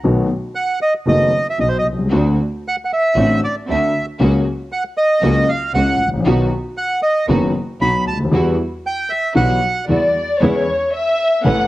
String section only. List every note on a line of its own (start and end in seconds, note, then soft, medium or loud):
2.12 2.34 C4 medium
2.12 2.34 D4 soft
2.12 2.34 F#4 medium
3.16 3.39 C4 medium
3.16 3.38 D4 soft
3.16 3.39 F#4 medium
3.68 3.90 C4 soft
3.68 3.90 D4 soft
3.68 3.90 F#4 soft
4.20 4.42 A#3 medium
4.20 4.42 C#4 medium
4.20 4.42 F#4 medium
5.22 5.44 A#3 medium
5.22 5.44 C#4 soft
5.22 5.44 F#4 medium
5.74 5.95 A#3 soft
5.74 5.95 C#4 soft
5.74 5.95 F#4 soft
6.25 6.46 B3 medium
6.25 6.47 D#4 medium
6.25 6.47 F#4 medium
7.28 7.49 B3 medium
7.28 7.49 D#4 medium
7.28 7.50 F#4 medium
7.80 8.02 B3 soft
7.80 8.02 D#4 soft
7.80 8.02 F#4 soft
8.33 8.54 G3 medium
8.33 8.54 E4 medium
8.33 8.54 F#4 medium
9.36 9.57 G3 medium
9.36 9.58 E4 soft
9.36 9.58 F#4 medium
9.89 10.11 G3 soft
9.89 10.11 E4 soft
9.89 10.11 F#4 soft
10.41 10.63 G#3 medium
10.41 10.63 C#4 medium
10.41 10.63 E4 medium
11.44 11.66 A3 medium
11.44 11.66 B3 medium
11.44 11.66 C#4 medium